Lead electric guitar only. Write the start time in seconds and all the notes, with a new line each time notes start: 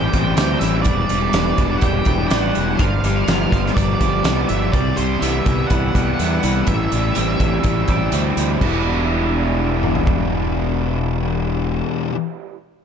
Already playing: G5
0.59 E5
0.82 D5
1.77 G5
2.28 G5
2.39 F#5
2.77 F5
3.74 D5
4.49 E5
4.72 D5
4.96 C5
5.20 E5
5.67 F#5
6.67 E5